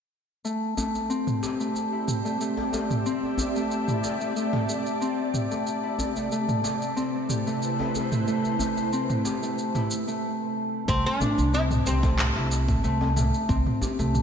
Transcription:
0.45 A3 C4, shaker
0.69 G4
0.77 A3, djembe bass, shaker
0.95 djembe tone, shaker
1.10 C4, shaker
1.27 mid tom, shaker
1.35 D5
1.43 G4, djembe slap, shaker
1.60 A3, shaker
1.75 djembe slap, shaker
1.92 E4
2.08 mid tom, shaker
2.25 A3, shaker
2.30 E5
2.41 A3, shaker
2.57 djembe slap, djembe tone
2.73 A3, djembe tone, shaker
2.90 mid tom, shaker
3.06 C4, shaker
3.23 djembe tone
3.38 G4, djembe bass, shaker
3.56 A3, djembe tone, shaker
3.71 shaker
3.88 E4, mid tom, shaker
4.04 djembe slap, shaker
4.21 A3, shaker
4.36 A3, shaker
4.53 mid tom, djembe slap
4.69 A3, shaker
4.86 shaker
5.01 C4, shaker
5.34 G4, mid tom, shaker
5.51 A3, djembe slap, shaker
5.66 C3, shaker
5.74 A3
5.84 E4
5.99 djembe bass, shaker
6.16 A3, djembe tone, shaker
6.32 A3, shaker
6.49 mid tom, shaker
6.62 A3 E4, djembe slap, shaker
6.82 shaker
6.88 B4
6.96 C4, djembe slap, shaker
7.23 C5
7.29 G4, mid tom, shaker
7.47 A3, shaker
7.62 shaker
7.79 E4, djembe slap, djembe tone
7.95 djembe tone, shaker
8.12 A3, mid tom, shaker
8.27 A3, shaker
8.45 djembe tone, shaker
8.59 A3, djembe bass, shaker
8.77 djembe tone, shaker
8.93 C4, shaker
9.10 mid tom, shaker
9.25 G4, djembe slap, shaker
9.43 A3, shaker
9.58 shaker
9.75 E4, mid tom, djembe slap, shaker
9.91 shaker
10.08 A3, shaker
10.88 C2 A3 C4, kick, shaker
11.06 D4
11.21 A3, mid tom, djembe bass, shaker
11.38 C2, djembe tone, shaker
11.53 C4 E4, shaker
11.71 mid tom, shaker
11.86 C2 C4 G4, shaker
12.03 A3, kick, djembe slap, shaker
12.19 clap, mid tom, shaker
12.36 C2 E4, djembe slap
12.52 shaker
12.68 A3, kick, mid tom, djembe slap, shaker
12.84 C2 A3, shaker
13.01 djembe tone
13.16 A3, mid tom, djembe tone, shaker
13.34 shaker
13.49 C2 C4, kick, shaker
13.66 mid tom, djembe tone
13.81 G4, djembe bass, shaker
13.99 C2 A3, djembe tone, shaker
14.15 mid tom, shaker

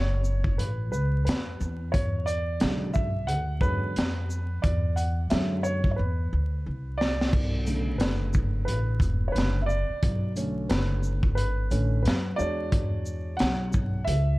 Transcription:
Already playing: F#1 C#5
0.24 shaker
0.44 kick
0.58 A1 B4, closed hi-hat
0.92 C#2 B4, shaker
1.25 F2 B4, snare, closed hi-hat
1.60 E2, shaker
1.92 C#5, kick, closed hi-hat
2.26 D5, closed hi-hat, shaker
2.60 B1 C#3 D3 F#3 G#3, snare, closed hi-hat
2.93 E5, kick, shaker
3.27 D2 F#5, closed hi-hat
3.61 E2 D3 F#3 G#3 C#4 B4, kick, shaker
3.96 F2, snare, closed hi-hat
4.30 shaker
4.62 E2 D5, kick, closed hi-hat
4.96 F#5, closed hi-hat, shaker
5.30 F#2 D3 F#3 G#3 C#4 E5, snare, closed hi-hat
5.63 C#5, shaker
5.84 kick
5.92 C#5
5.96 E2 B4
6.33 D2
6.66 C2
6.98 D5, snare
7.21 snare
7.33 B1, kick, crash
7.66 C#3 D3 A3, closed hi-hat, shaker
7.98 F#1 B4, snare, closed hi-hat
8.33 kick, shaker
8.65 A1 B4, closed hi-hat
9.00 E1, kick, closed hi-hat, shaker
9.28 C#5
9.32 F#1 D3 A3 C#4 B4, closed hi-hat
9.38 snare
9.62 E5
9.66 D5, shaker
9.89 muted upright bass stroke
10.03 B1, kick, closed hi-hat
10.36 D3 A3 C#4, closed hi-hat, shaker
10.69 F#1 B4, snare, closed hi-hat
11.03 shaker
11.23 kick
11.35 G#1 B4, closed hi-hat
11.71 A1 D3 A3 C#4, closed hi-hat, shaker
12.03 F#2 B4, closed hi-hat
12.08 snare
12.36 E2 G#3 D4 F#4 C#5 D5, shaker
12.72 kick, closed hi-hat
13.06 shaker
13.37 B1 F#5, snare, closed hi-hat
13.73 kick, shaker
14.04 C#2 E5, closed hi-hat

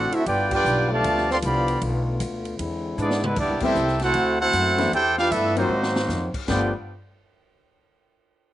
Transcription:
Already playing: A1 D3 A3 C4 D4 F#4 A4 C5 F#5
0.12 C4 E4 F#4 A4 E5, muted upright bass stroke, ride
0.26 G1 G3 B3 D4 F4 G4 B4 D5 G5, kick, ride
0.51 B3 D4 F4 G4 B4 D5 G5, kick, crash
0.64 B1, hi-hat pedal
0.90 D3 F3 A3 G4 D5 F5 A5
1.04 D2, kick, ride
1.18 snare
1.30 C4 A4 D5 F5 C6, snare
1.42 C2 D3 F3 B3 G4 D5 F5 B5, kick, hi-hat pedal, ride
1.68 ride
1.81 B1 A3, kick, ride
2.20 D2, kick, hi-hat pedal, ride
2.45 ride
2.58 E2 D3 G#3 C4 E4, kick, ride
2.98 G#2 G#3 B3 D4 E4 G#4 D5, hi-hat pedal
3.11 snare
3.24 D3 G#3 B3 D4 E4 B4, mid tom
3.36 E2 B3 D4 E4 G4 D5, kick, crash
3.49 C2
3.60 A1 G3 A3 B3 C4 E4 G4 A4 E5, kick, crash
3.75 C2, hi-hat pedal
3.88 snare
4.00 A3 C4 E4 F#4 A4 C5 F#5, snare, ride
4.14 D2, kick, ride
4.40 A3 C4 E4 F#4 A4 C5 F#5
4.53 F#2, kick, hi-hat pedal, ride
4.67 snare
4.78 E3 A3 B3 D4 E4, snare, ride
4.92 E2 E4 G4 A4 C5 G5, kick, ride
5.18 D4 F4 G4 B4 F5, snare
5.31 G2 A3 B3 D4 E4 A4 B4 E5, kick, hi-hat pedal, ride
5.56 D#3 F#3 A#3 C4 D#4 F4 F#4 C5, ride
5.69 G#2
5.83 snare
5.96 snare
6.08 F2, snare, hi-hat pedal
6.34 muted upright bass stroke, kick, crash
6.47 G1 G2 D3 F3 G3 A3 B3 D4 F4 B4 D5 G5, kick, snare, crash

